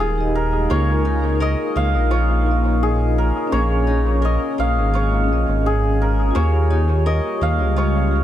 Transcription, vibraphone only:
0.16 0.64 D#4 medium
0.16 0.66 G4 medium
0.21 0.67 D#5 loud
0.65 2.40 D#4 medium
0.70 2.42 F4 medium
0.70 2.44 A#4 medium
2.42 3.46 D#4 medium
2.46 3.48 F4 medium
2.51 3.50 D#5 medium
3.47 5.22 C#4 medium
3.52 5.24 G#4 medium
3.56 5.27 C#5 medium
5.24 6.28 C#4 medium
5.29 6.30 G#4 medium
5.33 6.33 D#5 medium
6.31 8.05 F4 medium
6.35 8.07 G4 medium
6.40 8.10 C#5 loud
8.07 8.24 F4 medium
8.07 8.24 G4 medium
8.16 8.24 F5 medium

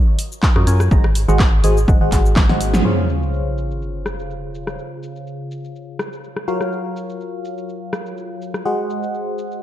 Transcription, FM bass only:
0.56 0.65 F#2 medium
0.67 0.89 F#2 medium
0.91 1.26 G#1 loud
1.28 1.62 G#1 loud
1.64 1.86 G#1 medium
1.88 1.98 G#1 loud
2.01 2.10 G#1 loud
2.12 2.47 G#1 loud
2.49 2.83 G#1 medium

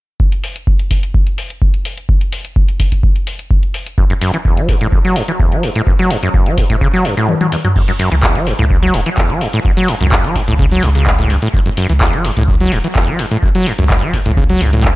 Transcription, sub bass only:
7.76 7.85 F#1 loud
8.12 8.29 C#2 medium
8.35 8.53 F#1 medium
8.59 8.90 C#2 medium
8.94 9.03 E1 medium
9.30 9.38 F#1 medium
9.65 9.74 F#1 medium
10.01 10.18 C#2 medium
10.24 10.42 F#1 medium
10.48 10.79 C#2 medium
10.83 11.38 C#2 loud
11.54 11.63 F#1 loud
11.90 12.07 C#2 medium
12.13 12.31 F#1 medium
12.37 12.68 C#2 medium
12.72 12.81 E1 medium
13.08 13.16 F#1 medium
13.43 13.52 F#1 loud
13.79 13.96 C#2 medium
14.02 14.20 F#1 medium
14.26 14.57 C#2 medium
14.61 14.96 C#2 loud

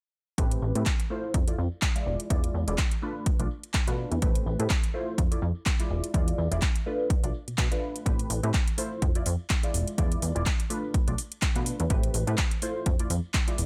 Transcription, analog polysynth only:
0.38 0.72 A3 medium
0.38 0.72 C4 medium
0.38 0.73 G4 medium
0.38 0.73 B4 loud
0.75 0.84 A3 medium
0.75 0.84 C4 medium
0.75 0.84 G4 medium
0.75 0.84 B4 medium
1.10 1.44 A3 medium
1.10 1.45 E4 medium
1.10 1.45 F4 medium
1.10 1.45 C5 medium
1.47 1.56 A3 medium
1.47 1.56 E4 medium
1.47 1.56 F4 medium
1.47 1.56 D5 medium
1.95 2.28 G#3 medium
1.95 2.28 E4 medium
1.95 2.28 F4 medium
1.95 2.28 D5 medium
2.30 2.64 G#3 medium
2.30 2.64 E4 medium
2.30 2.65 F4 medium
2.30 2.65 D5 loud
2.67 2.76 G#3 medium
2.67 2.76 E4 medium
2.67 2.76 F4 medium
2.67 2.76 D5 medium
3.02 3.36 A3 medium
3.02 3.36 D4 medium
3.02 3.37 F4 medium
3.02 3.37 B4 medium
3.39 3.48 A3 medium
3.39 3.48 D4 medium
3.39 3.48 F4 medium
3.39 3.48 D5 medium
3.87 4.19 A3 medium
3.87 4.20 D4 medium
3.87 4.20 F4 medium
3.87 4.20 B4 medium
4.22 4.56 A3 medium
4.22 4.56 C4 medium
4.22 4.56 G4 medium
4.22 4.57 B4 loud
4.59 4.68 A3 medium
4.59 4.68 C4 medium
4.59 4.68 G4 medium
4.59 4.68 B4 medium
4.94 5.28 A3 medium
4.94 5.28 E4 medium
4.94 5.29 F4 medium
4.94 5.29 C5 medium
5.31 5.40 A3 medium
5.31 5.40 E4 medium
5.31 5.40 F4 medium
5.31 5.40 D5 medium
5.79 6.12 G#3 medium
5.79 6.12 E4 medium
5.79 6.12 F4 medium
5.79 6.12 D5 medium
6.14 6.48 G#3 loud
6.14 6.48 E4 medium
6.14 6.48 F4 medium
6.14 6.49 D5 loud
6.51 6.60 G#3 medium
6.51 6.60 E4 medium
6.51 6.60 F4 medium
6.51 6.60 D5 medium
6.86 7.20 A3 medium
6.86 7.21 D4 medium
6.86 7.21 F4 medium
6.86 7.21 B4 medium
7.23 7.32 A3 medium
7.23 7.32 D4 medium
7.23 7.32 F4 medium
7.23 7.32 D5 medium
7.71 8.04 A3 medium
7.71 8.04 D4 medium
7.71 8.04 F4 medium
7.71 8.04 B4 medium
8.06 8.40 A3 medium
8.06 8.40 C4 medium
8.06 8.40 G4 medium
8.06 8.40 B4 loud
8.43 8.52 A3 medium
8.43 8.52 C4 medium
8.43 8.52 G4 medium
8.43 8.52 B4 medium
8.78 9.12 A3 medium
8.78 9.12 E4 medium
8.78 9.12 F4 medium
8.78 9.13 C5 medium
9.15 9.24 A3 medium
9.15 9.24 E4 medium
9.15 9.24 F4 medium
9.15 9.24 D5 medium
9.63 9.95 G#3 medium
9.63 9.96 E4 medium
9.63 9.96 F4 medium
9.63 9.96 D5 medium
9.98 10.32 G#3 medium
9.98 10.32 E4 medium
9.98 10.33 F4 medium
9.98 10.33 D5 loud
10.35 10.44 G#3 medium
10.35 10.44 E4 medium
10.35 10.44 F4 medium
10.35 10.44 D5 medium
10.70 11.04 A3 medium
10.70 11.04 D4 medium
10.70 11.05 F4 medium
10.70 11.05 B4 medium
11.07 11.16 A3 medium
11.07 11.16 D4 medium
11.07 11.16 F4 medium
11.07 11.16 D5 medium
11.55 11.88 A3 medium
11.55 11.88 D4 medium
11.55 11.88 F4 medium
11.55 11.88 B4 medium
11.90 12.24 A3 loud
11.90 12.24 C4 medium
11.90 12.24 G4 medium
11.90 12.25 B4 loud
12.27 12.36 A3 medium
12.27 12.36 C4 medium
12.27 12.36 G4 medium
12.27 12.36 B4 medium
12.62 12.96 A3 medium
12.62 12.96 E4 medium
12.62 12.97 F4 medium
12.62 12.97 C5 medium
12.99 13.08 A3 medium
12.99 13.08 E4 medium
12.99 13.08 F4 medium
12.99 13.08 D5 medium
13.47 13.66 G#3 medium
13.47 13.66 E4 medium
13.47 13.66 F4 medium
13.47 13.66 D5 medium

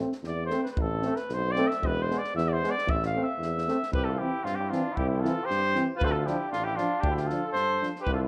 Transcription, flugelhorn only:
3.95 4.11 G4 medium
4.10 4.23 F4 medium
4.21 4.47 E4 medium
4.45 4.63 C4 medium
4.61 4.74 E4 medium
4.72 4.94 D4 medium
4.93 5.06 E4 medium
5.06 5.22 E4 medium
5.20 5.45 F4 medium
5.44 5.86 G4 medium
5.95 6.06 F4 loud
6.05 6.13 A4 medium
6.11 6.28 F4 medium
6.27 6.48 E4 medium
6.49 6.66 D4 medium
6.64 6.77 E4 medium
6.75 6.98 D4 medium
6.98 7.10 D4 loud
7.11 7.22 E4 medium
7.21 7.47 F4 medium
7.47 7.87 A4 medium
8.00 8.12 G4 medium
8.13 8.20 F4 medium
8.23 8.28 E4 medium

